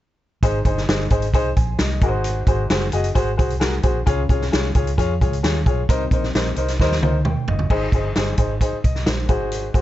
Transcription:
0.43 G#1 G#2 D#4 G#4 C5, kick, closed hi-hat
0.65 G1 D#4 G#4 C5, kick, closed hi-hat
0.77 snare
0.88 G1 D#4 G#4 C5, snare, closed hi-hat
1.10 G#1 D#4 G#4 C5, kick, closed hi-hat
1.22 closed hi-hat
1.34 C2 D#4 G#4 C5, kick, closed hi-hat
1.56 A#1 G#5, kick, closed hi-hat
1.79 C2 D#5, snare, closed hi-hat
2.01 G#1 G#2 F#4 G#4 A#4, kick, closed hi-hat
2.08 C5
2.24 closed hi-hat
2.47 G#1 F#4 G#4 C5, kick, closed hi-hat
2.70 F#1 F#4 G#4 C5, snare, closed hi-hat
2.92 F#1 F#4 G#4 D#5, closed hi-hat
3.04 closed hi-hat
3.15 G#1 F#4 G#4 C5, kick, closed hi-hat
3.37 C2 F#4 G#4 C5, kick, closed hi-hat
3.50 closed hi-hat
3.60 F#4 G#4 A#4, snare, closed hi-hat
3.83 A#1 F#4 G#4 C5, kick, closed hi-hat
4.06 C#2 C#3 F4 G#4 C#5, kick, closed hi-hat
4.29 C2 F4 G#4 C#5, kick, closed hi-hat
4.42 snare
4.52 C2 F4 G#4 C#5, snare, closed hi-hat
4.75 C#2 F4 G#4 C#5, kick, closed hi-hat
4.87 closed hi-hat
4.98 F2 F4 G#4 C#5, kick, closed hi-hat
5.21 C#2 F4 G#4 C#5, kick, closed hi-hat
5.33 closed hi-hat
5.43 D#2 F4 G#4 C#5, snare, closed hi-hat
5.66 B1 F4 G#4 C#5, kick, closed hi-hat
5.89 C2 C3 D#4 A#4 C5, kick, closed hi-hat
6.11 A#1 D#4 A#4 C5, kick, closed hi-hat
6.24 snare
6.35 A#1 D#4 A#4 C5, snare, closed hi-hat
6.56 C2 D#4 A#4 C5, closed hi-hat
6.68 snare, closed hi-hat
6.80 D#2 D#4 A#4 C5, kick, snare
6.92 snare
7.02 C#2 D#4 A#4 C5, high tom
7.24 D#2 G5, mid tom
7.47 G1 D#5, floor tom
7.59 floor tom
7.70 G#1 G#2 D#4 G#4 C5, kick, crash
7.92 G1 D#4 G#4 C5, kick, closed hi-hat
8.15 G1 D#4 G#4 C5, snare, closed hi-hat
8.37 G#1 D#4 G#4 C5, kick, closed hi-hat
8.61 D#4 G#4 C5, kick, closed hi-hat
8.73 muted fingered electric bass stroke
8.84 C2 D#5, kick, closed hi-hat
8.95 snare
9.06 A#1 C5, snare, closed hi-hat
9.28 G#1 G#2 F#4 G#4 C5, kick, closed hi-hat
9.52 closed hi-hat
9.74 G#1 F#4 G#4 C5, kick, closed hi-hat

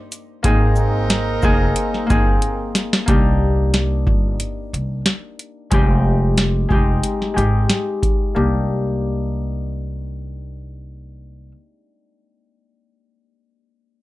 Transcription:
Already playing: A#3 D4 D#4 G4
0.12 closed hi-hat, shaker
0.43 G#1 A#3 C4 D#4 G#4 A#4, kick, closed hi-hat
0.76 shaker
1.10 snare, closed hi-hat
1.42 F1 A#3 C4 D#4 G#4, kick, shaker
1.76 closed hi-hat
1.94 snare
2.07 G1 A#3 C4 G#4, kick, closed hi-hat, shaker
2.13 D#4
2.42 closed hi-hat
2.75 snare, closed hi-hat, shaker
2.93 snare
3.06 C2 A#3 D4 G4, kick, closed hi-hat
3.11 D#4
3.74 snare, closed hi-hat
4.07 G1, kick
4.40 closed hi-hat
4.73 C2, closed hi-hat
5.06 snare, closed hi-hat
5.39 closed hi-hat
5.71 F1 G#3 C4 G4, kick, closed hi-hat
5.76 D#4
6.38 snare, closed hi-hat
6.69 F1 G#3 C4 G4, kick
6.75 D#4
7.03 closed hi-hat
7.22 snare
7.34 G#1 G#3 C4 G4, closed hi-hat
7.38 D#4
7.70 snare, closed hi-hat
8.03 kick, closed hi-hat
8.35 C2 A#3 D4 D#4 G4

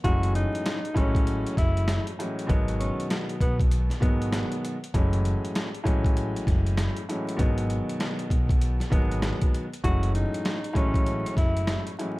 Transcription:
0.04 F#1 A2 E3 F#3 G#3 C#4 F#4, kick, closed hi-hat
0.23 closed hi-hat
0.35 D#4, closed hi-hat
0.55 closed hi-hat
0.66 cross-stick, snare, closed hi-hat
0.85 closed hi-hat
0.94 A1 A2 E3 F#3 G#3 C#4, kick, closed hi-hat
1.15 kick, closed hi-hat
1.27 closed hi-hat
1.47 closed hi-hat
1.57 F#1 E4, kick, snare, closed hi-hat
1.77 closed hi-hat
1.88 cross-stick, snare, closed hi-hat
2.07 closed hi-hat
2.19 A2 E3 F#3 G#3 C#4, closed hi-hat
2.39 closed hi-hat
2.47 G#1 B2 D#3 F#3 G#3 B3, kick, closed hi-hat
2.68 closed hi-hat
2.79 C#4, closed hi-hat
3.00 closed hi-hat
3.10 cross-stick, snare, closed hi-hat
3.29 closed hi-hat
3.41 B1 B3, kick, closed hi-hat
3.60 kick, closed hi-hat
3.71 closed hi-hat
3.90 snare, closed hi-hat
4.00 G#1 B2 D#3 F#3 G#3 B3, kick, closed hi-hat
4.22 closed hi-hat
4.32 cross-stick, snare, closed hi-hat
4.52 closed hi-hat
4.65 closed hi-hat
4.84 closed hi-hat
4.94 F#1 A2 E3 F#3 G#3 C#4, kick, closed hi-hat
5.13 closed hi-hat
5.25 closed hi-hat
5.45 closed hi-hat
5.55 cross-stick, snare, closed hi-hat
5.75 closed hi-hat
5.84 A1 A2 E3 F#3 G#3 C#4, kick, closed hi-hat
6.04 kick, closed hi-hat
6.17 closed hi-hat
6.36 closed hi-hat
6.47 F#1, kick, snare, closed hi-hat
6.67 closed hi-hat
6.77 cross-stick, snare, closed hi-hat
6.97 closed hi-hat
7.09 A2 E3 F#3 G#3 C#4, closed hi-hat
7.29 closed hi-hat
7.37 G#1 B2 D#3 F#3 G#3 B3, kick, closed hi-hat
7.58 closed hi-hat
7.70 closed hi-hat
7.89 closed hi-hat
8.00 cross-stick, snare, closed hi-hat
8.19 closed hi-hat
8.30 B1, kick, closed hi-hat
8.49 kick, closed hi-hat
8.62 closed hi-hat
8.80 snare, closed hi-hat
8.90 G#1 B2 D#3 F#3 G#3 B3, kick, closed hi-hat
9.12 closed hi-hat
9.22 cross-stick, snare, closed hi-hat
9.42 kick, closed hi-hat
9.54 closed hi-hat
9.73 closed hi-hat
9.83 F#1 A2 E3 F#3 G#3 C#4 F#4, kick, closed hi-hat
10.03 closed hi-hat
10.15 D#4, closed hi-hat
10.34 closed hi-hat
10.45 cross-stick, snare, closed hi-hat
10.64 closed hi-hat
10.73 A1 A2 E3 F#3 G#3 C#4, kick, closed hi-hat
10.94 kick, closed hi-hat
11.07 closed hi-hat
11.26 closed hi-hat
11.37 F#1 E4, kick, snare, closed hi-hat
11.57 closed hi-hat
11.67 cross-stick, snare, closed hi-hat
11.87 closed hi-hat
11.98 A2 E3 F#3 G#3 C#4, closed hi-hat

